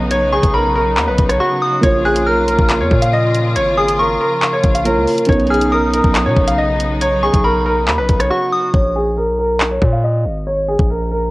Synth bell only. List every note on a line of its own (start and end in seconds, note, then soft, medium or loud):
0.32 0.53 C#6 medium
0.54 1.36 B5 medium
1.40 1.61 C#6 medium
1.62 1.82 D#6 medium
2.05 2.25 F#6 medium
2.26 3.09 F6 medium
3.78 3.98 D#6 medium
3.99 4.82 C#6 medium
5.50 5.71 F6 medium
5.72 6.54 D#6 medium
7.23 7.43 C#6 medium
7.44 8.27 B5 medium
8.31 8.51 C#6 medium
8.53 8.73 D#6 medium